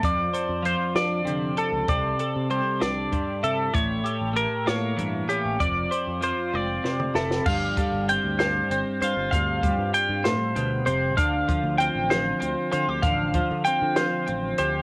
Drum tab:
CC |------------|------------|------------|------------|
HH |x-x-x-x-x-x-|x-x-x-x-x-x-|x-x-x-x-x-x-|x-x-x-------|
SD |------o-----|------o-----|------o-----|--------o-oo|
T1 |------------|------------|------------|------o-----|
T2 |------------|------------|------------|---------o--|
BD |o-----------|o-------o---|o-----------|o-----------|

CC |x-----------|------------|------------|------------|
HH |--x-x-x-x-x-|x-x-x-x-x-x-|x-x-x-x-x-x-|x-x-x-x-x-x-|
SD |------o-----|------o-----|------o-----|------o-----|
T1 |------------|------------|------------|------------|
T2 |------------|------------|------------|------------|
BD |o-o---------|o-o---------|o-o---------|o-o---------|